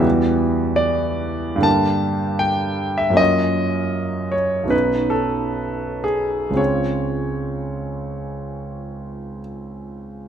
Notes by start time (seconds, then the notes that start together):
Already playing: E2 E3 G3
0.00 B3 F#4
0.76 D5
1.56 G2 D3 G3
1.61 A#3 G4 A5
2.39 G5
2.98 E5
3.10 F#2 F#3 A#3
3.15 C#4 F4 D#5
4.32 C#5
4.63 B1 F#3
4.67 B3 C#4 D#4 B4
5.10 A4
6.04 G#4
6.50 C#2 C#3 G#3 C4
6.56 F4 C#5